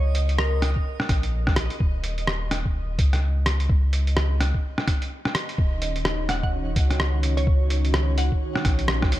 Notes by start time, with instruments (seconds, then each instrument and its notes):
Already playing: sub bass C#2, synth pluck C#5, synth texture D#5
0.15 closed hi-hat
0.29 closed hi-hat
0.38 synth pluck A#4, cross-stick
0.62 cross-stick, closed hi-hat
0.76 kick
1.00 cross-stick
1.09 sub bass A#1, kick, cross-stick, closed hi-hat
1.23 closed hi-hat
1.47 kick, cross-stick
1.56 cross-stick, closed hi-hat
1.70 closed hi-hat
1.80 sub bass D#1, kick
2.04 closed hi-hat
2.18 closed hi-hat
2.27 cross-stick
2.51 cross-stick, closed hi-hat
2.65 kick
2.99 sub bass C#2, kick, closed hi-hat
3.13 cross-stick, closed hi-hat
3.46 cross-stick, closed hi-hat
3.60 closed hi-hat
3.69 kick
3.93 closed hi-hat
4.07 closed hi-hat
4.17 cross-stick
4.41 cross-stick, closed hi-hat
4.55 kick
4.78 cross-stick
4.88 kick, cross-stick, closed hi-hat
5.02 closed hi-hat
5.25 cross-stick
5.35 cross-stick, closed hi-hat
5.49 closed hi-hat
5.58 sub bass D#1, analog synth pad D#3, kick
5.66 analog synth pad D#4
5.71 analog synth pad C#4
5.82 closed hi-hat
5.96 closed hi-hat
6.05 cross-stick
6.22 analog synth pad C#5
6.29 synth pluck F#5, cross-stick, closed hi-hat
6.35 analog synth pad F#4
6.43 synth pluck F#5, kick
6.76 sub bass C#2, kick, closed hi-hat
6.91 cross-stick, closed hi-hat
7.00 cross-stick
7.23 closed hi-hat
7.37 synth pluck C#5, closed hi-hat
7.47 kick
7.70 closed hi-hat
7.85 closed hi-hat
7.94 cross-stick
8.18 synth pluck F#5, closed hi-hat
8.32 kick
8.56 cross-stick
8.65 sub bass A#1, kick, cross-stick, closed hi-hat
8.79 closed hi-hat
8.88 cross-stick
9.02 kick, cross-stick
9.12 closed hi-hat